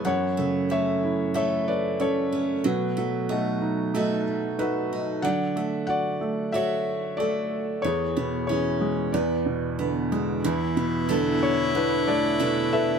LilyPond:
<<
  \new Staff \with { instrumentName = "Felt piano" } { \time 4/4 \key e \mixolydian \tempo 4 = 92 <cis'' fis''>4 <cis'' e''>4 <cis'' e''>8 <b' d''>8 <a' cis''>4 | <fis' b'>4 <fis' a'>4. r8 <fis' b'>4 | <d'' fis''>4 <d'' fis''>4 <cis'' e''>4 <a' d''>4 | <gis' cis''>4 <gis' cis''>4 <b' d''>4. r8 |
r4. cis''8 <d' b'>8 <a' b' d''>4 <a' b' e''>8 | }
  \new Staff \with { instrumentName = "Felt piano" } { \clef bass \time 4/4 \key e \mixolydian fis,8 cis8 a8 e'8 a4 cis'4 | b,8 fis8 a8 dis'8 a4 dis'4 | d8 a8 fis'8 a8 fis'4 a4 | e,8 b,8 e8 gis8 e,8 b,8 d8 gis8 |
e,8 b,8 d4 b8 a8 b,4 | }
  \new Staff \with { instrumentName = "Cello" } { \time 4/4 \key e \mixolydian r1 | r1 | r1 | r1 |
e'1 | }
  \new Staff \with { instrumentName = "Steel-string acoustic guitar" } { \time 4/4 \key e \mixolydian e8 a8 cis'4 <a a'>4 a8 cis'8 | fis8 a8 dis'4 <a dis' fis'>4 a8 dis'8 | fis8 a4. <a fis'>4 a4 | e8 b8 cis'4 b4 b8 d'8 |
e8 b8 <b d' a'>4 d'4 <b d' a'>4 | }
>>